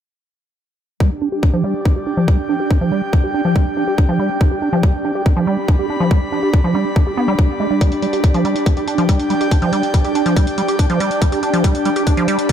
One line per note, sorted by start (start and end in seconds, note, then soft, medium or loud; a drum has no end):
1.00 1.10 G3 medium
1.00 12.52 D4 medium
1.00 12.52 G4 medium
1.00 kick loud
1.22 1.29 D4 medium
1.32 1.40 G4 medium
1.32 12.52 D5 medium
1.43 1.50 D4 medium
1.43 kick loud
1.54 1.64 F3 loud
1.64 1.74 G3 medium
1.80 5.23 G5 medium
1.85 1.93 D4 medium
1.85 kick loud
1.96 2.03 G4 medium
2.07 2.14 D4 medium
2.17 2.27 F3 loud
2.28 2.38 G3 medium
2.28 kick loud
2.49 2.57 D4 medium
2.60 2.67 G4 medium
2.71 2.78 D4 medium
2.71 kick loud
2.81 2.91 F3 loud
2.92 3.02 G3 medium
3.13 3.20 D4 medium
3.13 kick loud
3.24 3.31 G4 medium
3.34 3.42 D4 medium
3.45 3.55 F3 loud
3.56 3.66 G3 medium
3.56 kick loud
3.77 3.84 D4 medium
3.88 3.95 G4 medium
3.98 4.06 D4 medium
3.98 kick loud
4.09 4.19 F3 loud
4.19 4.30 G3 medium
4.41 4.48 D4 medium
4.41 kick loud
4.51 4.59 G4 medium
4.62 4.69 D4 medium
4.73 4.83 F3 loud
4.83 4.93 G3 medium
4.83 kick loud
5.05 5.12 D4 medium
5.15 5.23 G4 medium
5.21 8.63 B5 medium
5.26 5.33 D4 medium
5.26 kick loud
5.37 5.47 F3 loud
5.47 5.57 G3 medium
5.68 5.76 D4 medium
5.68 kick loud
5.79 5.86 G4 medium
5.90 5.97 D4 medium
6.00 6.10 F3 loud
6.11 6.21 G3 medium
6.11 kick loud
6.32 6.40 D4 medium
6.43 6.50 G4 medium
6.54 6.61 D4 medium
6.54 kick loud
6.64 6.74 F3 loud
6.75 6.85 G3 medium
6.96 7.03 D4 medium
6.96 kick loud
7.07 7.14 G4 medium
7.17 7.27 B3 loud
7.28 7.35 G3 loud
7.39 7.49 G3 medium
7.39 kick loud
7.60 7.67 G#3 medium
7.71 7.81 G3 medium
7.81 7.91 G3 medium
7.81 kick loud
7.81 closed hi-hat medium
7.92 closed hi-hat soft
8.02 8.07 G3 medium
8.02 closed hi-hat medium
8.13 8.20 G4 medium
8.13 closed hi-hat soft
8.24 8.31 D4 medium
8.24 kick loud
8.24 closed hi-hat medium
8.34 8.44 F3 loud
8.34 closed hi-hat soft
8.45 8.55 G3 medium
8.45 closed hi-hat medium
8.56 closed hi-hat soft
8.61 12.04 G5 medium
8.66 8.71 G3 medium
8.66 kick loud
8.66 closed hi-hat medium
8.77 8.84 G4 medium
8.77 closed hi-hat soft
8.88 8.95 D4 medium
8.88 closed hi-hat medium
8.98 9.08 F3 loud
8.98 closed hi-hat soft
9.09 9.19 G3 medium
9.09 kick loud
9.09 closed hi-hat medium
9.19 closed hi-hat soft
9.30 9.35 G3 medium
9.30 closed hi-hat medium
9.41 9.48 G4 medium
9.41 closed hi-hat soft
9.51 9.59 D4 medium
9.51 kick loud
9.51 closed hi-hat medium
9.62 9.72 F3 loud
9.62 closed hi-hat soft
9.73 9.83 G3 medium
9.73 closed hi-hat medium
9.83 closed hi-hat soft
9.94 9.98 G3 medium
9.94 kick loud
9.94 closed hi-hat medium
10.05 10.12 G4 medium
10.05 closed hi-hat medium
10.15 10.23 D4 medium
10.15 closed hi-hat medium
10.26 10.36 F3 loud
10.26 closed hi-hat soft
10.36 10.47 G3 medium
10.36 kick loud
10.36 closed hi-hat medium
10.47 closed hi-hat medium
10.58 10.62 G3 medium
10.58 closed hi-hat medium
10.68 10.76 G4 medium
10.68 closed hi-hat soft
10.79 10.86 D4 medium
10.79 kick loud
10.79 closed hi-hat medium
10.90 11.00 F3 loud
10.90 closed hi-hat medium
11.00 11.10 G3 medium
11.00 closed hi-hat medium
11.11 closed hi-hat medium
11.22 11.26 G3 medium
11.22 kick loud
11.22 closed hi-hat medium
11.32 11.40 G4 medium
11.32 closed hi-hat medium
11.43 11.50 D4 medium
11.43 closed hi-hat medium
11.54 11.64 F3 loud
11.54 closed hi-hat medium
11.64 11.74 G3 medium
11.64 kick loud
11.64 closed hi-hat medium
11.75 closed hi-hat medium
11.85 11.90 G3 medium
11.85 closed hi-hat medium
11.96 12.03 G4 medium
11.96 closed hi-hat medium
12.02 12.52 B5 medium
12.07 12.14 D4 medium
12.07 kick loud
12.07 closed hi-hat medium
12.17 12.27 F3 loud
12.17 closed hi-hat medium
12.28 12.38 G3 medium
12.28 closed hi-hat medium
12.39 closed hi-hat medium